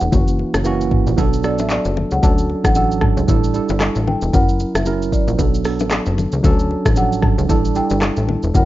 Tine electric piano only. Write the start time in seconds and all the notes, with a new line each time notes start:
Already playing: E3 A3 D4 G4
0.11 E3 A#3 C#4 F#4
0.64 E3 A#3 C#4 F#4
1.16 F#3 B3 D4 A4
1.43 F#3 B3 D4 A4
2.22 F#3 C#4 D4 A4
2.74 E3 C#4 D4 A4
2.81 F#3
3.27 G3 D4 E4 A4
3.53 G3 D4 E4 A4
4.32 F#3 C#4 E4 A#4
4.85 F#3 C#4 E4 A#4
5.37 F#3 B3 D4 A4
5.64 F#3 B3 D4 A4
6.43 F#3 C#4 D4 A4
6.95 F3 C#4 D4 A4
7.02 F#3
7.48 G3 D4 E4 A4
7.74 G3 D4 E4 A4
8.53 F#3 C#4 E4 A#4